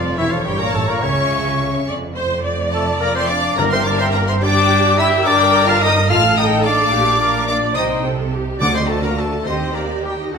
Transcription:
Already playing: double bass section F1, cello section F2, oboe F4, clarinet F4, violin section A4 F5, viola section D5
0.15 double bass section E1, cello section E2, french horn section E3, oboe E4, clarinet E4, violin section G4 E5, viola section C#5, flute E5
0.31 cello section F2, french horn section F3, oboe F4, clarinet F4, violin section A4 F5, flute F5
0.45 double bass section G1, cello section G2, french horn section G3, oboe G4, clarinet G4, violin section A#4 G5, flute G5
0.58 cello section A#2, french horn section A#3, oboe A#4, clarinet A#4, violin section D5 A#5
0.63 flute A#5
0.73 double bass section A1, cello section A2, french horn section A3, clarinet A4, oboe A4, violin section C#5 A5, flute A5
0.88 cello section A#2, french horn section A#3, oboe A#4, clarinet A#4, violin section D5 A#5, flute A#5
1.01 double bass section C#2, cello section C#3, french horn section C#4, oboe C#5, clarinet C#5, violin section E5 C#6, flute C#6
1.87 double bass section F1, cello section F2, viola section D5
2.16 viola section C5
2.44 viola section D5
2.72 french horn section A3, clarinet A4, oboe A4, violin section D5 A5, flute A5
3.00 french horn section A#3, clarinet A#4, oboe A#4, violin section D5 A#5, flute A#5
3.15 french horn section C4, clarinet C5, oboe C5, violin section E5 C6, flute C6
3.29 french horn section D4, clarinet D5, oboe D5, violin section F5 D6, flute D6
3.56 double bass section G1, cello section G2, timpani G2, french horn section A#3, viola section A#4, oboe A#4, clarinet A#4, violin section D5 A#5, flute A#5
3.71 french horn section C4, oboe C5, clarinet C5, violin section E5 C6, flute C6
3.85 french horn section D4, clarinet D5, oboe D5, violin section F5 D6, flute D6
4.00 french horn section C4, clarinet C5, oboe C5, violin section E5 C6, flute C6
4.13 french horn section A#3, clarinet A#4, oboe A#4, violin section D5 A#5, flute A#5
4.28 french horn section C4, clarinet C5, oboe C5, violin section E5 C6, flute C6
4.42 french horn section D4, viola section G4, clarinet D5, oboe D5, violin section G5 D6, flute D6
4.97 french horn section E4, clarinet E5, oboe E5, violin section G5 E6, flute E6
5.25 double bass section G1, cello section G2, french horn section D4, viola section A#4, clarinet D5, oboe D5, violin section G5 D6, flute D6
5.66 french horn section F4, clarinet F5, oboe F5, violin section A5 F6, flute F6
5.82 french horn section D#4, clarinet D#5, oboe D#5, violin section G5 D#6, flute D#6
6.09 double bass section A1, cello section A2, french horn section F4, viola section A4, oboe F5, clarinet F5, violin section A5 F6, flute F6
6.37 french horn section D#4, oboe D#5, clarinet D#5, violin section G5 D#6, flute D#6
6.64 french horn section D4, clarinet D5, oboe D5, violin section F5 D6, flute D6
6.92 double bass section A#1, cello section A#2, viola section G4
7.21 viola section A#4
7.48 french horn section D4, clarinet D5, oboe D5, viola section D5, violin section F5 D6, flute D6
7.74 double bass section C2, cello section C3, french horn section D#4, viola section C5, clarinet D#5, oboe D#5, violin section G5 D#6, flute D#6
8.05 viola section A4
8.33 viola section G4
8.59 double bass section D2, timpani D3, cello section D3, french horn section D4, viola section F#4, clarinet D5, oboe D5, violin section F#5 D6, flute D6
8.73 french horn section C4, clarinet C5, oboe C5, violin section D#5 C6, flute C6
8.87 french horn section A3, clarinet A4, oboe A4, violin section C5 A5, flute A5
9.02 clarinet A#4, oboe A#4, violin section D5 A#5, flute A#5
9.06 french horn section A#3
9.15 french horn section A3, clarinet A4, oboe A4, violin section C5 A5, flute A5
9.44 double bass section D#2, cello section D#3, french horn section C4, viola section G4, clarinet C5, oboe C5, violin section D#5 C6, flute C6
9.72 french horn section A#3, clarinet A#4, oboe A#4, violin section D5 A#5, flute A#5
10.03 french horn section G3, clarinet G4, oboe G4, violin section A#4 G5, flute G5
10.17 clarinet D#4, violin section G4 D#5, flute D#5
10.22 french horn section D#3, oboe D#4
10.32 double bass section D2, cello section D3, clarinet F#4, violin section A4 F#5, viola section A4, flute F#5

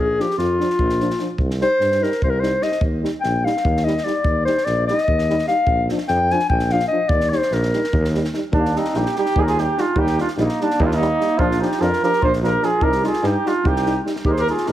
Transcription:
Already playing: tuba A#1
0.00 clarinet G#4
0.18 trombone F3, euphonium D4, clarinet G4, snare
0.31 snare
0.38 tuba F2, clarinet F4, snare
0.59 trombone F3, euphonium D4, snare
0.70 snare
0.79 tuba A#1, kick
0.89 snare
1.00 trombone F3, euphonium D4, snare
1.10 snare
1.19 trombone F3, euphonium D4, snare
1.38 tuba C2, kick
1.51 snare
1.60 trombone G3, euphonium D#4, clarinet C5, snare
1.80 tuba G2, snare
1.92 snare
2.01 trombone G3, euphonium D#4, clarinet A#4, snare
2.12 snare
2.22 tuba C2, clarinet C5, kick
2.30 clarinet A#4
2.40 trombone G3, euphonium D#4, clarinet C5, snare
2.61 trombone G3, euphonium D#4, clarinet D#5, snare
2.72 snare
2.81 tuba D#2, kick
3.02 trombone G3, euphonium D#4, snare
3.21 tuba A#1, clarinet G5, snare
3.44 trombone G3, euphonium D#4, clarinet F5, snare
3.57 snare
3.64 tuba D#2, kick
3.77 snare
3.85 trombone G3, euphonium D#4, clarinet D#5, snare
3.98 snare
4.04 trombone G3, euphonium D#4, clarinet D5, snare
4.24 tuba D#2, kick
4.45 trombone G3, euphonium D#4, clarinet C5, snare
4.58 snare
4.65 tuba A#1, clarinet D5, snare
4.87 trombone G3, euphonium D#4, clarinet D#5, snare
4.98 snare
5.08 tuba D#2, kick
5.18 snare
5.29 trombone G3, euphonium D#4, snare
5.39 snare
5.46 trombone G3, euphonium D#4, clarinet F5, snare
5.66 tuba A#1, kick
5.89 trombone F3, euphonium D4, snare
5.98 snare
6.08 tuba F2, clarinet G5, snare
6.30 trombone F3, euphonium D4, clarinet G#5, snare
6.39 snare
6.50 tuba A#1, clarinet G5, kick
6.59 snare
6.70 trombone F3, euphonium D4, clarinet F5, snare
6.80 snare
6.88 euphonium D4, clarinet D#5
6.92 trombone F3
7.09 tuba D#2, clarinet D5, kick
7.21 snare
7.30 trombone G3, euphonium D#4, clarinet C5, snare
7.42 snare
7.51 tuba A#1, clarinet A#4, snare
7.63 snare
7.73 trombone G3, euphonium D#4, snare
7.84 snare
7.93 tuba D#2, kick
8.05 snare
8.14 trombone G3, euphonium D#4, snare
8.24 snare
8.33 trombone G3, euphonium D#4, snare
8.52 tuba D#2, trombone G3, clarinet A#3, flugelhorn D4, euphonium D#4, kick
8.65 snare
8.75 trombone G3, clarinet C4, euphonium D#4, flugelhorn D#4, snare
8.85 snare
8.94 tuba A#1, trombone G3, euphonium D#4, clarinet D#4, flugelhorn G4, snare
9.06 snare
9.16 trombone G3, clarinet D#4, euphonium D#4, flugelhorn G4, snare
9.26 snare
9.36 tuba D#2, trombone G3, euphonium D#4, clarinet D#4, flugelhorn G#4, kick
9.41 clarinet G4, flugelhorn A#4
9.47 clarinet F4, flugelhorn G#4, snare
9.57 trombone G3, euphonium D#4, clarinet D#4, flugelhorn G4, snare
9.77 trombone G3, clarinet D4, euphonium D#4, flugelhorn F4, snare
9.95 tuba D#2, trombone G3, clarinet D#4, euphonium D#4, flugelhorn G4, kick
10.07 snare
10.17 trombone G3, euphonium D#4, flugelhorn F4, snare
10.21 clarinet D4
10.28 snare
10.37 tuba A#1, trombone G3, clarinet A#3, euphonium D#4, flugelhorn D#4, snare
10.49 snare
10.61 trombone G3, clarinet A#3, flugelhorn D4, euphonium D#4, snare
10.70 snare
10.79 tuba D#2, trombone G3, clarinet A#3, euphonium D#4, flugelhorn D#4, kick
10.86 clarinet D4, flugelhorn F4
10.91 flugelhorn D#4, snare
10.98 trombone G3, clarinet A#3
11.02 euphonium D#4, snare
11.19 trombone G3, euphonium D#4, snare
11.38 tuba A#1, trombone F3, euphonium D4, clarinet D4, flugelhorn F4, kick
11.51 snare
11.59 trombone F3, euphonium D4, clarinet D#4, flugelhorn G4, snare
11.72 snare
11.79 tuba F2, trombone F3, euphonium D4, clarinet F4, flugelhorn A#4, snare
11.93 snare
12.02 trombone F3, euphonium D4, clarinet G4, flugelhorn A#4, snare
12.13 snare
12.20 tuba A#1, trombone F3, euphonium D4, clarinet F4, flugelhorn C5, kick
12.33 snare
12.41 trombone F3, euphonium D4, flugelhorn A#4, snare
12.45 clarinet G4
12.61 trombone F3, euphonium D4, flugelhorn G#4, snare
12.66 clarinet F4
12.81 tuba C2, trombone G3, euphonium D#4, clarinet G4, flugelhorn A#4, kick
12.92 snare
13.03 trombone G3, euphonium D#4, clarinet F4, flugelhorn G#4, snare
13.13 snare
13.21 tuba G2, trombone G3, euphonium D#4, snare
13.26 clarinet D#4, flugelhorn G4
13.45 trombone G3, clarinet D4, euphonium D#4, flugelhorn F4, snare
13.64 tuba C2, trombone G3, euphonium D#4, clarinet D#4, flugelhorn G4, kick
13.76 snare
13.85 trombone G3, euphonium D#4, snare
14.04 trombone G3, euphonium D#4, snare
14.16 snare
14.24 tuba D#2, trombone G3, euphonium D#4, clarinet G4, flugelhorn A#4, kick
14.29 clarinet G#4, flugelhorn C5
14.36 clarinet G4, flugelhorn A#4, snare
14.47 trombone G3, euphonium D#4, clarinet F4, flugelhorn G#4, snare
14.57 snare
14.66 tuba A#1, trombone G3, euphonium D#4, clarinet G4, flugelhorn A#4, snare

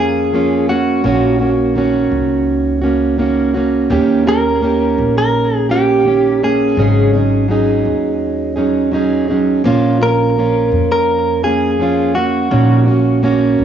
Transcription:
Already playing: upright bass F2, steel-string acoustic guitar C#4 F4, clean electric guitar G#4
0.00 steel-string acoustic guitar A#3
0.32 steel-string acoustic guitar F3 A#3 C#4 F4
0.69 steel-string acoustic guitar A#3 C#4, clean electric guitar F#4
1.04 upright bass A#1, steel-string acoustic guitar A#2 D#3 A#3 C#4 F#4
1.39 steel-string acoustic guitar A#3 C#4 F#4
1.76 steel-string acoustic guitar D#3 A#3 C#4 F#4
2.12 upright bass C#2
2.82 steel-string acoustic guitar A#3 C#4 F#4
3.18 steel-string acoustic guitar D#3 A#3 C#4 F#4
3.54 steel-string acoustic guitar A#3 C#4 F#4
3.90 upright bass D#2, steel-string acoustic guitar D#3 A#3 C#4 G4
4.25 steel-string acoustic guitar A#3 C#4 G4, clean electric guitar A#4
4.61 steel-string acoustic guitar D#3 A#3 C#4 G4
4.98 upright bass A#1
5.18 clean electric guitar A#4
5.69 steel-string acoustic guitar A#3 C#4 G4, clean electric guitar G4
6.05 steel-string acoustic guitar D#3 A#3 C#4 G4
6.43 steel-string acoustic guitar A#3 C#4, clean electric guitar G#4
6.77 upright bass G#1, steel-string acoustic guitar G#2 C#3 F#3 C#4 D#4 G#4
7.14 steel-string acoustic guitar F#3 C#4 D#4 G#4
7.48 steel-string acoustic guitar F#3 C#4 D#4 G#4
7.85 upright bass D#2
8.56 steel-string acoustic guitar F#3 C#4 D#4 G#4
8.92 steel-string acoustic guitar F#3 C#4 D#4 G#4
9.28 steel-string acoustic guitar F#3 C#4 D#4 G#4
9.64 upright bass A#1, steel-string acoustic guitar A#2 F3 A#3 C#4 F4
10.00 steel-string acoustic guitar A#3 C#4 F4, clean electric guitar A#4
10.37 steel-string acoustic guitar F3 A#3 C#4 F4
10.72 upright bass F2
10.92 clean electric guitar A#4
11.44 steel-string acoustic guitar A#3 C#4 F4, clean electric guitar G#4
11.79 steel-string acoustic guitar F3 A#3 C#4 F4
12.15 steel-string acoustic guitar A#3 C#4, clean electric guitar F#4
12.51 upright bass A#1, steel-string acoustic guitar A#2 D#3 A#3 C#4 F#4
12.86 steel-string acoustic guitar A#3 C#4 F#4
13.22 steel-string acoustic guitar D#3 A#3 C#4 F#4
13.59 upright bass C#2

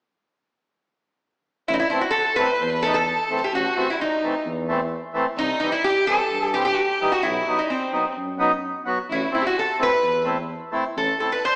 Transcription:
1.68 tuba A1, resonator guitar played with a steel bar E4, violin E4
1.74 resonator guitar played with a steel bar D#4
1.80 resonator guitar played with a steel bar E4, violin E4
1.90 accordion E3 A3 C4, resonator guitar played with a steel bar E4
2.01 resonator guitar played with a steel bar F#4
2.11 resonator guitar played with a steel bar A4
2.16 violin A4
2.36 accordion E3 A3 C4, resonator guitar played with a steel bar B4, violin B4
2.46 violin C5
2.54 violin B4
2.61 tuba E2, violin C5
2.70 violin B4
2.82 accordion E3 A3 D#4, resonator guitar played with a steel bar A4
2.94 resonator guitar played with a steel bar A4, violin A4
3.30 accordion E3 A3 C4
3.39 resonator guitar played with a steel bar A4
3.44 resonator guitar played with a steel bar G4
3.52 tuba A1, violin F#4, resonator guitar played with a steel bar F#4
3.76 accordion E3 A3 C4
3.90 resonator guitar played with a steel bar E4, violin E4
4.01 violin D#4, resonator guitar played with a steel bar D#4
4.23 accordion E3 A3 C4
4.46 tuba E2
4.69 accordion E3 A3 C4
5.14 accordion E3 A3 C4
5.38 tuba C2, violin D#4, resonator guitar played with a steel bar D#4
5.60 accordion E3 G3 C4, resonator guitar played with a steel bar D#4
5.72 resonator guitar played with a steel bar E4, violin E4
5.84 resonator guitar played with a steel bar G4, violin G4
6.07 accordion E3 G3 C4, violin A4, resonator guitar played with a steel bar A4
6.31 tuba G2
6.53 accordion E3 G3 C4, resonator guitar played with a steel bar G4, violin G4
6.65 resonator guitar played with a steel bar G4, violin G4
6.75 violin F#4
6.82 violin G4
7.00 accordion E3 G3 D#4
7.12 resonator guitar played with a steel bar F#4, violin F#4
7.23 tuba B1, resonator guitar played with a steel bar E4, violin E4
7.46 accordion F#3 B3 D#4
7.59 resonator guitar played with a steel bar D#4
7.70 violin C4, resonator guitar played with a steel bar C4
7.92 accordion F#3 B3 D#4
8.17 tuba F#2
8.38 accordion F#3 B3 D#4
8.85 accordion F#3 B3 F#4
9.09 tuba A1, violin E4, resonator guitar played with a steel bar E4
9.16 violin F#4
9.23 violin E4
9.31 accordion A3 C4 E4, violin E4, resonator guitar played with a steel bar E4
9.42 resonator guitar played with a steel bar G4
9.46 violin F#4, resonator guitar played with a steel bar F#4
9.58 violin A4, resonator guitar played with a steel bar A4
9.79 accordion A3 C4 E4, violin B4
9.83 resonator guitar played with a steel bar B4
10.03 tuba E2
10.24 accordion A3 C4 E4
10.71 accordion A3 C4 E4
10.96 tuba A1, resonator guitar played with a steel bar A4, violin A4
11.19 accordion A3 C4 E4, resonator guitar played with a steel bar A4, violin A4
11.32 resonator guitar played with a steel bar B4, violin B4
11.45 violin C5, resonator guitar played with a steel bar C5

